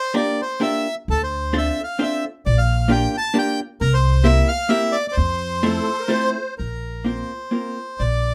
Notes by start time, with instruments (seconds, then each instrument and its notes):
Already playing: bandoneon C5
0.14 hollow-body jazz guitar A#3 D4 F4 G4 A#4, bandoneon D5
0.42 bandoneon C5
0.60 hollow-body jazz guitar A#3 D4 F4 G4 A#4, bandoneon E5
1.08 upright bass D2, bandoneon A4
1.24 bandoneon C5
1.53 hollow-body jazz guitar C4 D4 F4 A4 C5
1.58 bandoneon E5
1.84 bandoneon F5
1.99 hollow-body jazz guitar C4 D4 F4 A4 C5
2.03 bandoneon E5
2.46 upright bass A#1, bandoneon D5
2.58 bandoneon F5
2.88 hollow-body jazz guitar A#3 D4 F4 G4 A#4, bandoneon G5
3.17 bandoneon A5
3.34 hollow-body jazz guitar A#3 D4 F4 G4 A#4
3.39 bandoneon G5
3.81 upright bass C2, bandoneon A#4
3.94 bandoneon C5
4.24 hollow-body jazz guitar A#3 C4 E4 G4 A#4, bandoneon E5
4.48 bandoneon F5
4.69 hollow-body jazz guitar A#3 C4 E4 G4 A#4, bandoneon E5
4.92 bandoneon D5
5.08 bandoneon D5
5.12 bandoneon C5
5.17 upright bass F2
5.63 hollow-body jazz guitar A3 C4 E4 F4 A4, accordion A4
6.00 accordion A#4
6.08 hollow-body jazz guitar A3 C4 E4 F4 A4, accordion C5
6.58 upright bass A#1, bandoneon A#4
7.04 hollow-body jazz guitar A#3 C4 F4 A#4, bandoneon C5
7.51 hollow-body jazz guitar A#3 C4 F4 A#4
7.99 upright bass A#1, bandoneon D5